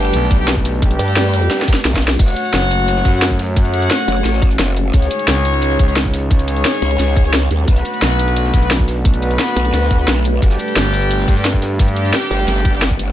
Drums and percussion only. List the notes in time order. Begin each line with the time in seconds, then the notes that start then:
0.05 closed hi-hat
0.13 closed hi-hat, ride
0.22 snare, shaker
0.31 kick, snare, closed hi-hat, ride, shaker
0.47 snare, closed hi-hat, ride
0.56 kick, shaker
0.65 snare, closed hi-hat, ride, shaker
0.82 kick, closed hi-hat, ride
0.91 closed hi-hat
0.99 closed hi-hat, ride, shaker
1.08 closed hi-hat
1.16 snare, closed hi-hat, ride
1.25 snare
1.33 closed hi-hat, ride, shaker
1.42 closed hi-hat
1.50 snare, closed hi-hat, ride
1.59 snare, ride, shaker
1.62 snare
1.68 kick, snare, closed hi-hat, ride, shaker
1.74 snare
1.77 snare
1.85 snare, closed hi-hat, ride
1.94 kick, snare, ride, shaker
1.97 snare
2.02 snare, closed hi-hat, shaker
2.08 snare, ride, shaker
2.19 kick, closed hi-hat, crash, ride, shaker
2.28 snare, closed hi-hat, shaker
2.36 closed hi-hat, ride
2.45 closed hi-hat
2.53 snare, closed hi-hat, ride, shaker
2.62 snare, shaker
2.71 closed hi-hat, ride, shaker
2.79 closed hi-hat
2.88 closed hi-hat, ride, shaker
2.96 snare, shaker
3.05 kick, snare, closed hi-hat, ride
3.14 shaker
3.22 snare, closed hi-hat, ride, shaker
3.31 kick
3.39 snare, closed hi-hat, ride, shaker
3.56 kick, closed hi-hat, ride, shaker
3.65 closed hi-hat, shaker
3.74 closed hi-hat, ride
3.82 closed hi-hat
3.90 snare, closed hi-hat, ride, shaker
3.99 snare, shaker
4.08 closed hi-hat, ride, shaker
4.17 closed hi-hat
4.25 snare, closed hi-hat, ride, shaker
4.34 snare, shaker
4.42 kick, closed hi-hat, ride
4.51 shaker
4.59 snare, closed hi-hat, ride, shaker
4.76 closed hi-hat, ride, shaker
4.93 kick, closed hi-hat, ride, shaker
5.02 snare, closed hi-hat, shaker
5.11 closed hi-hat, ride
5.19 closed hi-hat
5.28 snare, closed hi-hat, ride, shaker
5.36 snare, shaker
5.45 closed hi-hat, ride, shaker
5.54 closed hi-hat
5.62 closed hi-hat, ride, shaker
5.70 snare, shaker
5.79 kick, snare, closed hi-hat, ride
5.88 shaker
5.96 snare, closed hi-hat, ride, shaker
6.05 kick
6.13 snare, closed hi-hat, ride, shaker
6.31 kick, closed hi-hat, ride, shaker
6.39 closed hi-hat, shaker
6.47 closed hi-hat, ride
6.57 closed hi-hat
6.64 snare, closed hi-hat, ride, shaker
6.74 snare, shaker
6.82 closed hi-hat, ride, shaker
6.91 closed hi-hat
6.99 snare, closed hi-hat, ride, shaker
7.08 snare, shaker
7.16 kick, closed hi-hat, ride
7.25 shaker
7.33 snare, closed hi-hat, ride, shaker
7.51 closed hi-hat, ride, shaker
7.67 kick, closed hi-hat, ride, shaker
7.77 snare, closed hi-hat, shaker
7.85 closed hi-hat, ride
7.94 closed hi-hat
8.02 snare, closed hi-hat, ride, shaker
8.10 snare, shaker
8.19 closed hi-hat, ride, shaker
8.28 closed hi-hat
8.36 closed hi-hat, ride, shaker
8.45 snare, shaker
8.53 kick, snare, closed hi-hat, ride
8.62 shaker
8.71 snare, closed hi-hat, ride, shaker
8.79 kick
8.88 snare, closed hi-hat, ride, shaker
9.05 kick, closed hi-hat, ride, shaker
9.14 closed hi-hat, shaker
9.22 closed hi-hat, ride
9.31 closed hi-hat
9.39 snare, closed hi-hat, ride, shaker
9.48 snare, shaker
9.56 closed hi-hat, ride, shaker
9.65 closed hi-hat
9.73 snare, closed hi-hat, ride, shaker
9.82 snare, shaker
9.91 kick, closed hi-hat, ride
9.99 shaker
10.08 snare, closed hi-hat, ride, shaker
10.25 closed hi-hat, ride, shaker
10.42 kick, closed hi-hat, ride, shaker
10.51 snare, closed hi-hat, shaker
10.59 closed hi-hat, ride
10.68 closed hi-hat
10.76 snare, closed hi-hat, ride, shaker
10.85 snare, shaker
10.93 closed hi-hat, ride, shaker
11.02 closed hi-hat
11.11 closed hi-hat, ride, shaker
11.19 snare, shaker
11.27 kick, snare, closed hi-hat, ride
11.36 shaker
11.45 snare, closed hi-hat, ride, shaker
11.54 kick
11.62 snare, closed hi-hat, ride, shaker
11.79 kick, snare, closed hi-hat, ride, shaker
11.88 closed hi-hat, shaker
11.96 closed hi-hat, ride
12.05 closed hi-hat
12.13 snare, closed hi-hat, ride, shaker
12.22 snare, shaker
12.31 closed hi-hat, ride, shaker
12.39 closed hi-hat
12.48 snare, closed hi-hat, ride, shaker
12.56 snare, shaker
12.65 kick, closed hi-hat, ride
12.74 shaker
12.82 snare, closed hi-hat, ride, shaker
12.91 kick
12.99 closed hi-hat, ride, shaker